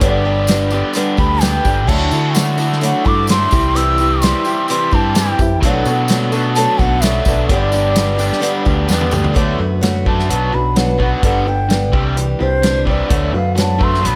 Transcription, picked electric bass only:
0.02 G1
1.19 D2
1.66 G1
1.89 D2
2.12 D3
3.06 G2
3.53 C2
4.93 G2
5.40 F#2
5.63 B1
5.86 B2
6.79 B1
7.26 B1
7.50 G1
8.67 D2
8.89 E2
9.12 D2
9.36 D2
9.59 F#2
10.29 B1
10.54 B1
11.23 G1
11.94 C2
12.41 C2
13.11 D2
13.34 F#2
14.05 B1

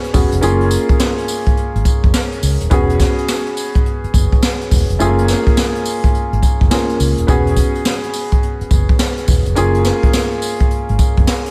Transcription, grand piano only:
Already playing: B3 C#4 F#4 G#4
0.13 B3 C#4 F#4 G#4
0.41 A#3 C#4 F4 G#4
2.70 B3 C#4 F#4 G#4
4.99 A3 C#4 F4 G#4
5.05 A#3
6.71 A#3 C#4 F4 G#4
7.27 B3 C#4 F#4 G#4
9.55 A#3 C#4 F4 G#4

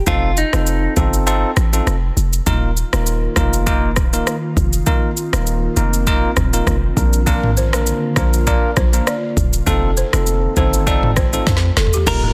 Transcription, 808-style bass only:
0.07 F1
0.53 F1
0.97 G1
1.57 A1
1.87 F1
2.17 F1
2.47 D#1
2.93 D#1
3.37 F1
3.97 D1
4.57 F1
5.33 D#1
5.77 F1
6.37 D#1
6.67 F1
6.97 A#1
8.17 A#1
8.77 A#1
9.37 D#1
9.67 F1
10.13 F1
10.57 G1
11.17 A1
11.47 F2
11.77 F1
12.07 D#1

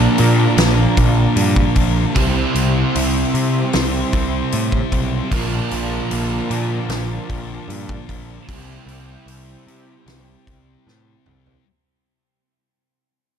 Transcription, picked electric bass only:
0.19 A#2
0.57 A#1
0.98 A#1
1.36 G2
1.76 A#1
2.17 C2
2.55 C2
2.96 C2
3.34 C3
3.75 C2
4.13 C2
4.53 A2
4.93 B1
5.31 A#1
5.72 A#1
6.12 A#1
6.51 A#2
6.89 A#1
7.30 A#1
7.68 G2
8.10 A#1
8.49 C2
8.86 C2
9.26 C2
9.67 C3
10.07 C2
10.47 C2
10.87 A2
11.28 C2

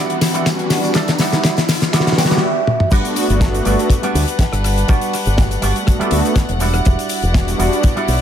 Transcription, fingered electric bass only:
2.92 G1
3.30 G1
3.66 G1
4.15 D2
4.53 G1
4.89 G1
5.26 G1
5.62 G1
6.00 muted fingered electric bass stroke
6.12 D2
6.49 E1
6.86 E1
7.23 E1
7.59 E1
8.08 B1

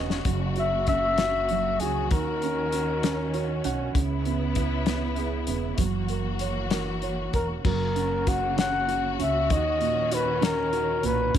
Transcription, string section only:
Already playing: C#3 B3 F#4
0.26 A#3
2.12 D#3 C#4
3.94 C#3 B3 E4
5.78 E3 A#3 F#4
7.64 C#3 A#3 F#4
9.51 D#3 C#4

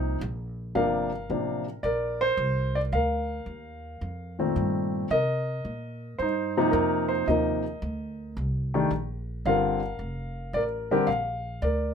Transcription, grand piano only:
Already playing: C3 F3 A#3 D#4 C5
0.75 C3 F3 A#3 D4 A#4 F5
1.30 C3 F3 A#3 D4
1.83 A#4 D5
2.21 C5
2.75 D5
2.93 A#4 F5
4.39 A#2 D#3 A3 C4
5.11 A#4 D#5
6.18 D#4 C5
6.57 C3 F3 A#3 D#4
6.71 A#4
7.09 C5
7.28 C3 F3 A#3 D#4 A#4 D#5
8.74 D#3 A3 D4 G4
9.46 D3 G3 C4 F4 A#4 F5
10.54 A#4 D5
10.91 D3 G3 C4 G4 A#4
11.07 F5
11.62 A#4 D5

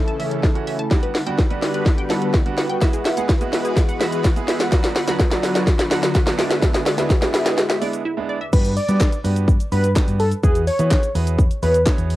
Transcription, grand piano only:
0.19 E3 A3 C#4 E4
0.55 E3 A3 C#4 F#4
0.91 G3 B3 D4 F#4
1.26 G3 B3 D4 F#4
1.50 G3 B3 D4 F#4
2.10 G3 B3 D4 A4
2.46 G3 B3 D4 F#4
2.81 G#3 B3 E4 F#4
3.17 G#3 B3 E4 G#4
3.41 G#3 B3 E4 F#4
4.00 G#3 B3 E4 F#4
4.36 G#3 B3 E4 G#4
4.72 F#3 B3 D4 F#4
5.07 F#3 B3 D4 F#4
5.31 F#3 B3 D4 F#4
5.91 F#3 B3 D4 F#4
6.26 F#3 B3 D4 F#4
6.38 G#3 B3 D4 E4
6.98 G#3 B3 D4 E4
7.22 G#3 B3 D4 E4
7.81 G#3 B3 D4 E4
8.17 G#3 B3 D4 E4
8.53 B3 D4 F#4 G4 B4
8.88 B3 D4 F#4 G4 B4
9.24 B3 D4 F#4 G4 B4
9.72 B3 D4 F#4 G4 B4
9.96 B3 D4 F#4 G4 B4
10.43 B3 E4 F#4 G#4 B4
10.79 B3 E4 F#4 G#4 B4
11.15 B3 E4 F#4 G#4 B4
11.62 B3 E4 F#4 G#4 C#5
11.86 B3 E4 F#4 G#4 C#5

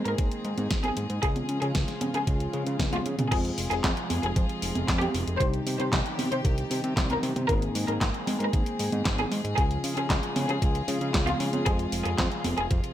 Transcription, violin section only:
0.05 A#4
0.84 G#4
1.23 G#4
1.62 G#4
2.14 G#4
2.92 F4
3.32 G#4
3.71 G#4
4.23 G#4
5.01 G4
5.40 C5
5.79 C5
6.32 C5
7.10 A#4
7.49 A#4
7.88 A#4
8.40 A#4
9.19 G#4
9.58 G#4
9.97 G#4
10.49 G#4
11.27 F4
11.66 G#4
12.05 G#4
12.57 G#4

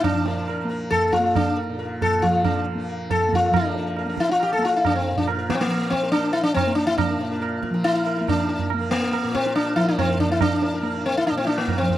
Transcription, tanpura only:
Already playing: A#2 F3 A#3
0.11 F3
0.64 A#3
1.19 A#3
1.70 A#2
2.21 F3
2.75 A#3
3.28 A#3
3.50 F3
4.05 A#3
4.58 A#3
5.12 A#2
5.65 F3
6.16 A#3
6.67 A#3
7.17 A#2
7.70 F3
8.20 A#3
8.74 A#3
9.24 A#2
9.75 F3
10.28 A#3
10.83 A#3
11.31 A#2
11.81 F3

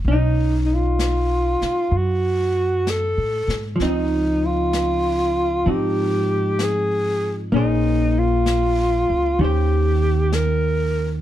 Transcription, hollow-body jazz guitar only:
0.08 C#4
0.13 D#4
3.76 F3
3.82 C4
3.87 D#4
5.66 F3 C4 D#4
7.52 A#3 C#4 G#4
7.57 C5
9.39 D#3 C#4 G4
9.44 C5

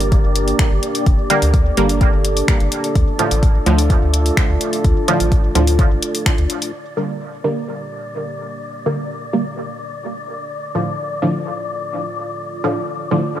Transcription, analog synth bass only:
Already playing: G1
0.24 G1
0.71 G1
1.06 G1
1.42 D2
1.77 G1
2.13 G1
2.60 G1
2.95 D2
3.31 A1
3.66 D2
4.02 D2
4.49 D2
4.84 D2
5.20 A1
5.55 D2
5.91 A1
6.38 D2

